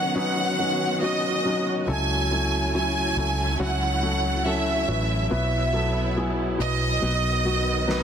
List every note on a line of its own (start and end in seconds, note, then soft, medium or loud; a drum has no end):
0.00 1.84 D#3 medium
0.00 1.90 D#3 soft
0.00 0.15 F#3 medium
0.00 1.84 B3 medium
0.00 0.16 C#4 medium
0.00 1.84 C#4 medium
0.00 0.16 D#4 medium
0.00 1.84 F#4 medium
0.00 0.16 B4 medium
0.00 0.14 C#5 medium
0.00 0.17 F#5 medium
0.15 0.57 F#3 medium
0.15 0.57 C#4 medium
0.15 0.57 D#4 medium
0.15 0.57 B4 medium
0.15 0.99 F#5 medium
0.59 1.00 F#3 medium
0.59 1.00 C#4 medium
0.59 1.00 D#4 medium
0.59 1.00 B4 medium
1.02 1.43 F#3 medium
1.02 1.43 C#4 medium
1.02 1.43 D#4 medium
1.02 1.43 F#4 medium
1.02 1.67 D#5 medium
1.45 1.86 F#3 medium
1.45 1.86 C#4 medium
1.45 1.86 D#4 medium
1.45 1.86 F#4 medium
1.88 3.13 C#2 medium
1.88 3.13 C#3 medium
1.88 2.29 F#3 medium
1.88 8.03 F#3 medium
1.88 5.28 A3 medium
1.88 2.29 C#4 medium
1.88 2.29 E4 medium
1.88 5.28 E4 medium
1.88 2.29 A4 medium
1.88 2.70 G#5 medium
2.31 2.72 F#3 medium
2.31 2.72 C#4 medium
2.31 2.72 E4 medium
2.31 2.72 A4 medium
2.74 3.15 F#3 medium
2.74 3.15 C#4 soft
2.74 3.15 E4 soft
2.74 3.15 F#4 medium
2.74 3.56 G#5 medium
3.17 3.57 C#2 medium
3.17 3.58 F#3 medium
3.17 3.58 C#4 medium
3.17 3.58 E4 medium
3.17 3.58 A4 medium
3.59 4.84 C#2 medium
3.59 4.00 F#3 medium
3.59 4.00 C#4 medium
3.59 4.00 E4 medium
3.59 4.01 F#4 medium
3.59 4.46 F#5 medium
4.02 4.43 F#3 medium
4.02 4.43 C#4 medium
4.02 4.43 E4 soft
4.02 4.44 A4 medium
4.45 4.86 F#3 medium
4.45 4.86 C#4 medium
4.45 4.86 E4 medium
4.45 4.86 A4 medium
4.45 5.30 E5 medium
4.88 5.28 A1 medium
4.88 5.29 F#3 medium
4.88 5.29 C#4 soft
4.88 5.29 E4 medium
4.88 5.29 B4 medium
5.30 6.56 B1 medium
5.30 6.55 B2 medium
5.30 5.71 F#3 medium
5.30 5.71 B3 medium
5.30 7.00 B3 medium
5.30 5.72 E4 medium
5.30 7.01 E4 medium
5.30 5.72 B4 medium
5.30 6.13 E5 medium
5.73 6.14 F#3 medium
5.73 6.14 B3 medium
5.73 6.14 E4 medium
5.73 6.15 A4 medium
6.16 6.57 F#3 medium
6.16 6.57 B3 soft
6.16 6.57 E4 medium
6.16 6.58 G#4 medium
6.58 7.00 B1 medium
6.58 7.00 F#3 medium
6.58 7.00 B3 medium
6.58 7.00 E4 medium
6.58 7.00 B4 medium
6.58 8.03 D#5 loud
7.01 8.03 B1 medium
7.01 8.03 B2 medium
7.01 8.03 D#3 medium
7.01 7.43 F#3 medium
7.01 8.03 B3 medium
7.01 7.43 B3 medium
7.01 7.43 D#4 medium
7.01 7.43 B4 medium
7.45 7.86 F#3 medium
7.45 7.86 B3 medium
7.45 7.86 D#4 medium
7.45 7.86 F#4 medium
7.88 8.03 F#3 medium
7.88 8.03 B3 medium
7.88 8.03 D#4 medium
7.88 8.03 B4 medium
7.88 snare soft